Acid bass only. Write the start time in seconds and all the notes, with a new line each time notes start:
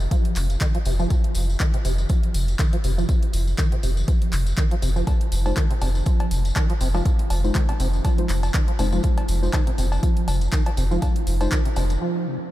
0.11 F3
0.36 C3
0.61 D#3
0.75 F3
0.86 C3
0.99 F3
1.10 F2
1.60 D#3
1.74 C3
1.85 C3
2.10 F3
2.34 C3
2.59 D#3
2.73 F3
2.84 C3
2.98 F3
3.09 F2
3.58 D#3
3.72 C3
3.83 C3
4.08 F3
4.33 C3
4.58 D#3
4.71 F3
4.82 C3
4.96 F3
5.07 F2
5.57 D#3
5.70 C3
5.82 C3
6.06 F3
6.31 C3
6.56 D#3
6.70 F3
6.81 C3
6.94 F3
7.05 F2
7.55 D#3
7.69 C3
7.80 C3
8.05 F3
8.29 C3
8.54 D#3
8.68 F3
8.79 C3
8.93 F3
9.04 F2
9.53 D#3
9.67 C3
9.78 C3
10.03 F3
10.28 C3
10.53 D#3
10.66 F3
10.77 C3
10.91 F3
11.02 F2
11.52 D#3
11.65 C3
11.77 C3
12.01 F3
12.26 C3